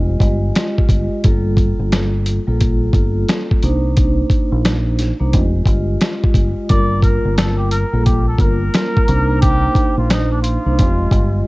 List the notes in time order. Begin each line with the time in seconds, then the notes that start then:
Already playing: F1 G#3 F4 G4 D#5
0.20 G1 G#3 F4 G4 D#5, kick, closed hi-hat
0.55 G#3 F4 G4 D#5, snare, closed hi-hat
0.79 kick
0.89 G1 G#3 F4 G4 D#5, kick, closed hi-hat
1.24 G1 G3 A#3 F4 A4, kick, closed hi-hat
1.57 kick, closed hi-hat
1.79 G1
1.92 snare, closed hi-hat
2.26 closed hi-hat
2.47 A#1 G3 A#3 F4 A4
2.60 kick, closed hi-hat
2.93 G1 G3 A#3 F4 A4, kick, closed hi-hat
3.28 snare, closed hi-hat
3.51 kick
3.62 C2 A#3 D4 D#4 C5, closed hi-hat
3.96 A#3 D4 D#4 C5, kick, closed hi-hat
4.30 kick, closed hi-hat
4.52 A#1
4.65 snare, closed hi-hat
4.99 snare, closed hi-hat
5.20 C2 A#3 D4 D#4 C5
5.32 F1 G#3 F4 G4 D#5, kick, closed hi-hat
5.65 G1 G#3 F4 G4 D#5, kick, closed hi-hat
6.00 G#3 F4 G4 D#5, snare, closed hi-hat
6.24 kick
6.34 G1 G#3 F4 G4 D#5, kick, closed hi-hat
6.69 G1 G3 A#3 F4 A#4 D5, kick, closed hi-hat
7.02 A#4, kick, closed hi-hat
7.25 G1
7.38 A4, snare, closed hi-hat
7.58 G4
7.71 A#4, closed hi-hat
7.93 A#1 G3 A#3 F4 A4
8.06 G4, kick, closed hi-hat
8.28 A4
8.38 G1 G3 A#3 F4 A#4, kick, closed hi-hat
8.74 snare, closed hi-hat
8.97 kick
9.08 C2 A#3 D4 D#4 C5, closed hi-hat
9.42 A#3 D4 D#4 G4 C5, kick, closed hi-hat
9.75 kick, closed hi-hat
9.98 A#1 F4
10.10 D#4, snare, closed hi-hat
10.32 D4
10.42 F4, closed hi-hat
10.65 C2 A#3 D4 D#4 C5
10.78 F1 G#3 F4 G4 D#5, kick, closed hi-hat
11.10 G1 G#3 F4 G4 D#5, kick, closed hi-hat